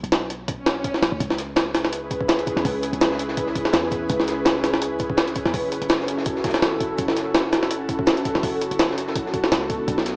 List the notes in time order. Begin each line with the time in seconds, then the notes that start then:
0.04 B1, closed hi-hat
0.12 snare, closed hi-hat
0.30 closed hi-hat
0.48 kick, closed hi-hat, swell
0.66 snare, closed hi-hat
0.84 kick, closed hi-hat
0.94 snare
1.02 B1, snare, closed hi-hat
1.12 D2
1.20 C#2 C#4 E4 G#4 B4, kick, closed hi-hat, shaker
1.30 snare
1.38 snare, closed hi-hat, shaker
1.56 snare, closed hi-hat, shaker
1.75 snare, closed hi-hat, shaker
1.85 snare
1.92 closed hi-hat, shaker
2.11 kick, closed hi-hat, shaker
2.21 kick
2.28 snare, closed hi-hat, shaker
2.39 closed hi-hat
2.47 kick, closed hi-hat, shaker
2.56 E2, snare
2.65 C#2, kick, open hi-hat, shaker
2.83 closed hi-hat, shaker
2.93 C#2, closed hi-hat
3.01 snare, closed hi-hat, shaker
3.11 snare
3.19 closed hi-hat, shaker
3.28 snare
3.37 kick, closed hi-hat, shaker
3.47 snare
3.55 kick, closed hi-hat, shaker
3.65 snare, closed hi-hat
3.73 E2, snare, closed hi-hat, shaker
3.91 kick, closed hi-hat, shaker
4.09 C#2, kick, closed hi-hat, shaker
4.20 snare
4.27 snare, closed hi-hat, shaker
4.45 snare, closed hi-hat, shaker
4.64 snare, closed hi-hat, shaker
4.74 snare
4.82 closed hi-hat, shaker
4.99 kick, closed hi-hat, shaker
5.10 kick
5.17 snare, closed hi-hat, shaker
5.28 closed hi-hat
5.35 kick, closed hi-hat, shaker
5.46 E2, snare
5.54 F#1 E4 F#4 A4, kick, open hi-hat, shaker
5.72 closed hi-hat, shaker
5.82 F#1, closed hi-hat
5.89 snare, closed hi-hat, shaker
6.00 snare
6.07 closed hi-hat, shaker
6.17 snare
6.25 kick, closed hi-hat, shaker
6.36 snare
6.44 kick, snare, closed hi-hat, shaker
6.49 snare, shaker
6.54 snare, shaker
6.62 G#1, snare, closed hi-hat, shaker
6.80 kick, closed hi-hat, shaker
6.98 F#1, kick, closed hi-hat, shaker
7.08 snare
7.16 snare, closed hi-hat, shaker
7.35 snare, closed hi-hat, shaker
7.53 snare, closed hi-hat, shaker
7.63 snare
7.71 closed hi-hat, shaker
7.89 kick, closed hi-hat, shaker
7.99 kick
8.07 snare, closed hi-hat, shaker
8.17 closed hi-hat
8.25 kick, closed hi-hat, shaker
8.35 G#1, snare
8.43 F#1, kick, open hi-hat, shaker
8.61 closed hi-hat, shaker
8.71 F#1, closed hi-hat
8.79 snare, closed hi-hat, shaker
8.90 snare
8.98 closed hi-hat, shaker
9.07 snare
9.15 B1 B3 D4, kick, closed hi-hat, shaker
9.26 snare
9.34 kick, closed hi-hat, shaker
9.43 snare, closed hi-hat
9.52 C#2, snare, closed hi-hat, shaker
9.70 kick, closed hi-hat, shaker
9.88 B1, kick, closed hi-hat, shaker
9.98 snare
10.06 snare, closed hi-hat, shaker